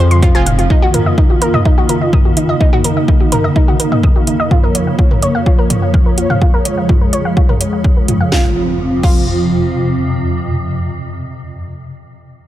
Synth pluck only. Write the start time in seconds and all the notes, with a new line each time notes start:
0.11 C6
0.22 F4
0.35 G#5
0.46 F5
0.59 F4
0.70 D#4
0.82 F#4
0.94 A#4
1.06 D#5
1.18 D#4
1.30 F#4
1.42 A#4
1.54 D#5
1.65 D#4
1.78 F#4
1.89 A#4
2.02 D#5
2.13 D#6
2.25 F#4
2.37 D#4
2.49 D#5
2.60 D#4
2.73 F#4
2.84 A#4
2.97 D#5
3.08 D#4
3.20 F#4
3.32 A#4
3.44 D#5
3.56 D#4
3.68 F#4
3.80 A#4
3.92 D#5
4.04 D#6
4.16 F#4
4.27 D#4
4.40 D#5
4.51 F4
4.63 A#4
4.75 C#5
4.87 F5
4.99 F4
5.11 A#4
5.23 C#5
5.35 F5
5.46 F4
5.58 A#4
5.70 C#5
5.82 F5
5.94 F6
6.06 A#4
6.18 F4
6.30 F5
6.42 F4
6.54 A#4
6.65 C#5
6.78 F5
6.89 F4
7.01 A#4
7.13 C#5
7.25 F5
7.37 F4
7.49 A#4
7.61 C#5
7.73 F5
7.85 F6
7.97 A#4
8.08 F4
8.21 F5
8.32 F4
9.04 F4